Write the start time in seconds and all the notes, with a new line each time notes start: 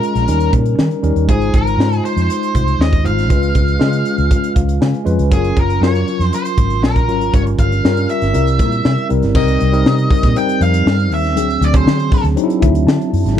Already playing: G#3 C#4 F4 A#4
0.03 closed hi-hat
0.15 A#1, snare, closed hi-hat
0.27 D#2 G3 C#4 D#4 A#4, closed hi-hat
0.40 closed hi-hat
0.53 A#2, kick, closed hi-hat
0.66 closed hi-hat
0.78 D#3, snare
0.91 closed hi-hat
1.02 D#2 G3 C#4 D#4 A#4, closed hi-hat
1.16 D#2, closed hi-hat
1.28 G#1 G#3 D#4 F4 G#4 C5, kick, closed hi-hat
1.42 closed hi-hat
1.54 G#1 A#4, kick, closed hi-hat
1.67 closed hi-hat
1.78 G#2 G#3 D#4 F4 C5, snare
1.93 closed hi-hat
2.05 C5, closed hi-hat
2.17 F2, snare, closed hi-hat
2.30 closed hi-hat
2.43 closed hi-hat
2.55 C2, kick, closed hi-hat
2.68 closed hi-hat
2.79 D#2 D#5, snare
2.93 kick, closed hi-hat
3.04 G#1 G#3 D#4 F4 C5 F5, closed hi-hat
3.18 snare, closed hi-hat
3.29 C#2 G#3 C#4 F4 B4, kick, closed hi-hat
3.43 closed hi-hat
3.55 C#2, kick, closed hi-hat
3.68 closed hi-hat
3.79 C#3 G#3 C#4 F4 G#4, snare
3.93 closed hi-hat
4.05 closed hi-hat
4.18 C#2, closed hi-hat
4.31 kick, closed hi-hat
4.44 closed hi-hat
4.55 C#2 F5, kick, closed hi-hat
4.69 closed hi-hat
4.81 C#3 G#5, snare
4.94 closed hi-hat
5.04 F2 G#3 C#4 F4 B4, closed hi-hat
5.19 C#2, closed hi-hat
5.30 F#1 F#3 C#4 F4 G#4 A#4, kick, closed hi-hat
5.45 closed hi-hat
5.56 F#1 A#4, kick, closed hi-hat
5.70 closed hi-hat
5.81 F#2 F#3 C#4 F4 A#4 C#5, snare
5.95 closed hi-hat
6.08 closed hi-hat
6.19 F2 C5, snare, closed hi-hat
6.33 C5, closed hi-hat
6.45 closed hi-hat
6.58 G#1, kick, closed hi-hat
6.70 closed hi-hat
6.83 A#1 A#4, snare
6.96 kick, closed hi-hat
7.07 G#1 F#3 C#4 F4 A#4, closed hi-hat
7.21 closed hi-hat
7.33 G1 G3 C#4 F4 A#4 C#5, kick, closed hi-hat
7.47 closed hi-hat
7.58 G1 F5, kick, closed hi-hat
7.72 closed hi-hat
7.84 G2 G3 C#4 F4 A#4, snare
7.97 closed hi-hat
8.09 E5, closed hi-hat
8.22 G1, snare, closed hi-hat
8.33 C2 G3 C4 E4 A#4, closed hi-hat
8.47 closed hi-hat
8.59 A#2, kick, closed hi-hat
8.72 closed hi-hat
8.85 C3, snare
8.98 closed hi-hat
9.09 C2 G3 C4 E4 A#4, closed hi-hat
9.23 G1, snare, closed hi-hat
9.35 C2 G3 C4 D#4 A#4 D#5, kick, crash
9.48 closed hi-hat
9.60 C2, closed hi-hat
9.72 G3 C4 D#4 A#4, closed hi-hat
9.86 C3, snare
9.99 closed hi-hat
10.11 kick, open hi-hat
10.23 A#2, kick, snare, closed hi-hat
10.36 G3 C4 D#4 C5 G5, closed hi-hat
10.49 closed hi-hat
10.61 F2 F5, closed hi-hat
10.74 closed hi-hat
10.86 G2, snare
11.00 closed hi-hat
11.11 D#2 E5, open hi-hat
11.24 snare, closed hi-hat
11.36 D2 F#3 C4 D4 G#4, closed hi-hat
11.50 closed hi-hat
11.61 D2 D5, closed hi-hat
11.73 F#3 C4 D4 G#4 C5, kick, closed hi-hat
11.86 D3, snare
12.00 closed hi-hat
12.12 kick, open hi-hat
12.24 D2, snare, closed hi-hat
12.36 F#3 C4 D4 D#4, closed hi-hat
12.43 E4
12.50 closed hi-hat
12.62 D2 E5, kick, closed hi-hat
12.75 closed hi-hat
12.87 D3 A5, snare
13.01 closed hi-hat
13.13 F#2, open hi-hat
13.26 G#1, snare, closed hi-hat
13.36 F3 C#4